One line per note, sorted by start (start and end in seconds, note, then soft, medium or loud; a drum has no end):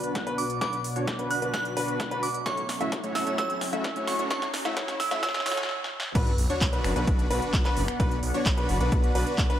0.00 2.42 B2 medium
0.00 2.42 B3 medium
0.00 0.24 D4 medium
0.00 0.24 F#4 medium
0.00 2.42 F#4 medium
0.00 0.24 B4 loud
0.00 2.42 D5 medium
0.00 0.40 F#6 loud
0.00 closed hi-hat soft
0.00 riser medium
0.15 kick loud
0.15 snare medium
0.15 closed hi-hat medium
0.27 0.43 D4 medium
0.27 0.43 F#4 medium
0.27 0.43 B4 loud
0.27 closed hi-hat soft
0.38 0.60 D6 medium
0.38 open hi-hat medium
0.50 closed hi-hat soft
0.61 0.78 D4 loud
0.61 0.78 F#4 medium
0.61 0.78 B4 loud
0.61 1.33 D6 loud
0.61 kick loud
0.61 snare medium
0.61 closed hi-hat medium
0.73 closed hi-hat soft
0.84 open hi-hat loud
0.96 1.13 D4 medium
0.96 1.13 F#4 medium
0.96 1.13 C#5 medium
0.96 closed hi-hat soft
1.07 kick loud
1.07 snare medium
1.07 closed hi-hat medium
1.19 1.39 D4 medium
1.19 1.39 F#4 medium
1.19 1.39 B4 medium
1.19 closed hi-hat soft
1.31 1.52 F#6 loud
1.31 open hi-hat medium
1.42 1.74 D4 medium
1.42 1.74 F#4 medium
1.42 1.74 B4 medium
1.42 closed hi-hat soft
1.54 2.25 F#6 loud
1.54 kick loud
1.54 snare medium
1.54 closed hi-hat medium
1.65 closed hi-hat soft
1.77 2.09 D4 medium
1.77 2.09 F#4 medium
1.77 2.09 B4 loud
1.77 open hi-hat loud
1.88 closed hi-hat soft
2.00 kick loud
2.00 snare medium
2.00 closed hi-hat medium
2.11 2.28 D4 loud
2.11 2.28 F#4 medium
2.11 2.28 B4 loud
2.11 closed hi-hat soft
2.23 2.47 D6 medium
2.23 open hi-hat loud
2.34 closed hi-hat soft
2.46 5.66 F#3 medium
2.46 2.63 A3 medium
2.46 5.66 C#4 medium
2.46 2.63 C#4 medium
2.46 2.63 E4 medium
2.46 2.63 F#4 medium
2.46 5.66 A4 medium
2.46 2.63 C#5 loud
2.46 4.29 E5 medium
2.46 3.17 C#6 medium
2.46 kick loud
2.46 snare medium
2.46 closed hi-hat medium
2.57 closed hi-hat soft
2.69 snare medium
2.69 open hi-hat loud
2.81 2.97 A3 medium
2.81 2.97 C#4 medium
2.81 2.97 E4 medium
2.81 2.97 F#4 medium
2.81 2.97 E5 medium
2.81 closed hi-hat soft
2.92 kick loud
2.92 snare medium
2.92 closed hi-hat medium
3.04 3.24 A3 medium
3.04 3.24 C#4 medium
3.04 3.24 E4 medium
3.04 3.24 F#4 medium
3.04 3.24 C#5 medium
3.04 closed hi-hat soft
3.15 3.37 E6 medium
3.15 snare medium
3.15 open hi-hat medium
3.27 3.36 A3 medium
3.27 3.36 C#4 medium
3.27 3.36 E4 medium
3.27 3.36 F#4 medium
3.27 3.36 C#5 medium
3.27 closed hi-hat soft
3.38 3.55 A3 medium
3.38 3.55 C#4 medium
3.38 3.55 F#4 medium
3.38 3.55 C#5 loud
3.38 4.10 E6 loud
3.38 kick loud
3.38 snare medium
3.38 closed hi-hat medium
3.50 closed hi-hat soft
3.61 snare medium
3.61 open hi-hat loud
3.73 3.89 A3 medium
3.73 3.89 C#4 medium
3.73 3.89 E4 medium
3.73 3.89 F#4 medium
3.73 3.89 E5 medium
3.73 closed hi-hat soft
3.84 kick loud
3.84 snare medium
3.84 closed hi-hat medium
3.96 4.16 A3 medium
3.96 4.16 C#4 medium
3.96 4.16 E4 medium
3.96 4.16 F#4 medium
3.96 4.16 C#5 medium
3.96 closed hi-hat soft
4.07 4.18 C#6 medium
4.07 snare medium
4.07 open hi-hat loud
4.19 4.29 A3 medium
4.19 4.29 C#4 medium
4.19 4.29 E4 medium
4.19 4.29 F#4 medium
4.19 4.29 C#5 medium
4.19 closed hi-hat soft
4.30 4.47 A3 medium
4.30 4.47 C#4 medium
4.30 4.47 E4 medium
4.30 4.47 C#5 loud
4.30 5.68 F#5 medium
4.30 5.02 C#6 medium
4.30 kick loud
4.30 snare medium
4.30 closed hi-hat medium
4.42 snare medium
4.42 closed hi-hat soft
4.54 snare medium
4.54 open hi-hat loud
4.65 4.75 A3 medium
4.65 4.75 C#4 medium
4.65 4.75 E4 medium
4.65 4.75 F#4 medium
4.65 4.75 E5 medium
4.65 snare medium
4.65 closed hi-hat soft
4.77 4.93 C#4 medium
4.77 4.93 F#4 medium
4.77 4.93 C#5 loud
4.77 kick loud
4.77 snare loud
4.77 closed hi-hat medium
4.88 snare medium
4.88 closed hi-hat soft
5.00 5.22 E6 medium
5.00 snare medium
5.00 open hi-hat medium
5.11 5.21 A3 medium
5.11 5.21 C#4 medium
5.11 5.21 E4 medium
5.11 5.21 F#4 medium
5.11 5.21 E5 medium
5.11 snare medium
5.11 closed hi-hat soft
5.23 5.39 A3 medium
5.23 5.39 C#4 medium
5.23 5.39 E4 medium
5.23 5.39 F#4 medium
5.23 5.39 C#5 loud
5.23 5.70 E6 loud
5.23 kick loud
5.23 snare loud
5.23 closed hi-hat medium
5.29 snare medium
5.34 snare medium
5.34 closed hi-hat soft
5.40 snare medium
5.46 5.63 A3 loud
5.46 5.63 C#4 medium
5.46 5.63 E4 medium
5.46 5.63 F#4 medium
5.46 5.62 C#5 loud
5.46 5.63 C#5 loud
5.46 snare loud
5.46 open hi-hat loud
5.52 snare medium
5.57 snare medium
5.57 closed hi-hat soft
5.63 snare medium
5.69 snare medium
5.84 snare medium
6.00 snare loud
6.15 6.34 B1 medium
6.15 9.60 B3 medium
6.15 6.32 D4 loud
6.15 6.32 F#4 medium
6.15 6.32 B4 loud
6.15 9.60 B4 medium
6.15 6.32 B4 loud
6.15 9.60 D5 medium
6.15 9.60 F#5 medium
6.15 kick loud
6.15 closed hi-hat medium
6.15 crash loud
6.15 sub drop medium
6.27 closed hi-hat soft
6.38 6.48 B1 loud
6.38 open hi-hat loud
6.50 6.66 D4 medium
6.50 6.66 F#4 medium
6.50 6.66 C#5 medium
6.50 6.66 C#5 loud
6.50 closed hi-hat soft
6.61 6.80 B1 medium
6.61 kick loud
6.61 clap loud
6.61 closed hi-hat medium
6.73 6.93 D4 medium
6.73 6.93 F#4 medium
6.73 6.93 B4 medium
6.73 closed hi-hat soft
6.84 6.94 F#1 medium
6.84 finger snap medium
6.84 open hi-hat medium
6.96 7.05 B1 medium
6.96 7.28 D4 medium
6.96 7.28 F#4 medium
6.96 7.28 B4 medium
6.96 closed hi-hat soft
7.07 7.26 B1 medium
7.07 kick loud
7.07 closed hi-hat medium
7.19 closed hi-hat soft
7.31 7.40 B1 loud
7.31 7.62 D4 medium
7.31 7.62 F#4 medium
7.31 7.62 B4 loud
7.31 open hi-hat loud
7.42 closed hi-hat soft
7.54 7.63 B1 loud
7.54 kick loud
7.54 clap loud
7.54 closed hi-hat medium
7.65 7.82 D4 loud
7.65 7.82 F#4 medium
7.65 7.82 B4 loud
7.65 clap soft
7.65 closed hi-hat soft
7.77 7.86 F#1 loud
7.77 open hi-hat medium
7.88 finger snap medium
7.88 closed hi-hat soft
8.00 8.19 B1 medium
8.00 8.16 D4 loud
8.00 8.16 F#4 medium
8.00 8.16 B4 loud
8.00 kick loud
8.00 closed hi-hat medium
8.11 closed hi-hat soft
8.23 8.32 B1 medium
8.23 open hi-hat loud
8.34 8.51 D4 medium
8.34 8.51 F#4 medium
8.34 8.51 C#5 medium
8.34 closed hi-hat soft
8.46 8.65 B1 medium
8.46 kick loud
8.46 clap loud
8.46 closed hi-hat medium
8.57 8.78 D4 medium
8.57 8.78 F#4 medium
8.57 8.78 B4 medium
8.57 closed hi-hat soft
8.69 8.78 F#1 loud
8.69 open hi-hat medium
8.80 8.90 B1 loud
8.80 9.12 D4 medium
8.80 9.12 F#4 medium
8.80 9.12 B4 medium
8.80 closed hi-hat soft
8.92 9.11 B1 medium
8.92 kick loud
8.92 closed hi-hat medium
9.04 closed hi-hat soft
9.15 9.25 B1 loud
9.15 9.47 D4 medium
9.15 9.47 F#4 medium
9.15 9.47 B4 loud
9.15 open hi-hat loud
9.27 closed hi-hat soft
9.38 9.48 B1 medium
9.38 kick loud
9.38 clap loud
9.38 closed hi-hat medium
9.50 9.60 D4 loud
9.50 9.60 F#4 medium
9.50 9.60 B4 loud
9.50 closed hi-hat soft